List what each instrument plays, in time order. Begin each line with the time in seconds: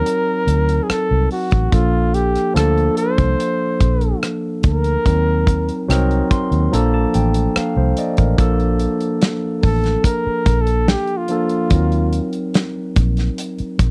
Already playing: tine electric piano F#3 C4 D#4 A#4, flugelhorn A#4
0.06 closed hi-hat
0.47 fingered electric bass D2, closed hi-hat
0.69 closed hi-hat
0.83 flugelhorn G#4
0.90 flugelhorn A4, muted fingered electric bass stroke, cross-stick, closed hi-hat
1.11 fingered electric bass C2
1.31 flugelhorn F#4, open hi-hat
1.51 fingered electric bass A1, kick, closed hi-hat
1.72 fingered electric bass A#1, tine electric piano F3 A#3 D4 A4, flugelhorn F4, kick, closed hi-hat
2.14 flugelhorn G4, closed hi-hat
2.35 cross-stick, closed hi-hat
2.54 fingered electric bass D2, tine electric piano F3 A#3 D4 A4, flugelhorn A4, cross-stick, closed hi-hat
2.78 closed hi-hat
2.97 flugelhorn C5, closed hi-hat
3.18 fingered electric bass C2, kick, closed hi-hat
3.40 closed hi-hat
3.81 fingered electric bass A#1, kick, closed hi-hat
4.01 closed hi-hat
4.23 cross-stick, closed hi-hat
4.63 fingered electric bass D2, flugelhorn A#4, kick, closed hi-hat
4.84 closed hi-hat
5.05 fingered electric bass D#2, tine electric piano F#3 C4 D#4 A#4, kick, closed hi-hat
5.47 kick, closed hi-hat
5.69 closed hi-hat
5.88 fingered electric bass C2, tine electric piano F#3 C4 D#4 A#4, cross-stick, closed hi-hat
6.11 closed hi-hat
6.31 tine electric piano C6, kick, closed hi-hat
6.51 fingered electric bass D#2, closed hi-hat
6.71 fingered electric bass A#1, tine electric piano F3 A#3 D4 A4 A#5, closed hi-hat
6.94 tine electric piano A5
7.14 fingered electric bass A1, tine electric piano G5, closed hi-hat
7.34 closed hi-hat
7.56 tine electric piano F5, muted fingered electric bass stroke, cross-stick, closed hi-hat
7.77 fingered electric bass C2, tine electric piano C5
7.97 tine electric piano D5 D#5, closed hi-hat
8.17 fingered electric bass A1, tine electric piano A#4, kick, closed hi-hat
8.38 fingered electric bass A#1, tine electric piano F3 A#3 D4 A4, kick, closed hi-hat
8.60 closed hi-hat
8.80 closed hi-hat
9.01 closed hi-hat
9.22 snare, closed hi-hat
9.63 fingered electric bass A1, flugelhorn A4, kick, open hi-hat
9.84 snare, closed hi-hat
10.04 flugelhorn A#4, kick, closed hi-hat
10.27 muted fingered electric bass stroke
10.46 fingered electric bass A#1, kick, closed hi-hat
10.61 flugelhorn A4
10.67 closed hi-hat
10.88 flugelhorn G4, snare, closed hi-hat
11.07 closed hi-hat
11.17 flugelhorn F4
11.28 tine electric piano F3 A#3 D4 A4, closed hi-hat
11.49 closed hi-hat
11.70 fingered electric bass D#2, tine electric piano F#3 C4 D#4 A#4, kick, closed hi-hat
11.92 closed hi-hat
12.13 closed hi-hat
12.33 closed hi-hat
12.54 snare, closed hi-hat
12.96 fingered electric bass A#1, kick, closed hi-hat
13.17 snare, closed hi-hat
13.38 closed hi-hat
13.58 muted fingered electric bass stroke, closed hi-hat
13.79 fingered electric bass A#1, kick, closed hi-hat